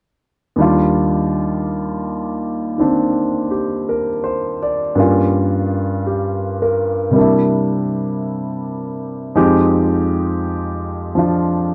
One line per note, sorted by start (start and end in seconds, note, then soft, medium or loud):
0.56 4.96 D#2 soft
0.56 2.76 D#3 soft
0.56 4.94 G3 soft
0.56 2.79 D4 soft
0.61 4.98 F4 soft
2.78 4.97 D#3 soft
2.78 4.98 C4 soft
2.78 4.99 D4 soft
3.51 4.08 G4 soft
3.89 4.57 A#4 soft
4.24 4.81 C5 soft
4.63 5.18 D5 soft
4.95 7.15 G2 soft
4.95 7.11 G3 soft
4.95 7.14 A#3 soft
4.95 7.17 C#4 soft
5.00 7.17 F4 soft
6.07 6.94 G4 soft
6.62 7.40 A#4 soft
7.11 9.32 C3 soft
7.11 9.33 G3 soft
7.16 9.35 A#3 soft
7.16 9.36 D4 soft
7.21 9.38 E4 soft
9.35 11.74 F2 soft
9.35 11.14 F3 soft
9.35 11.74 G#3 soft
9.35 11.74 D#4 soft
9.35 11.74 G4 medium
11.15 11.74 F3 soft
11.15 11.74 D4 soft
11.15 11.74 F4 soft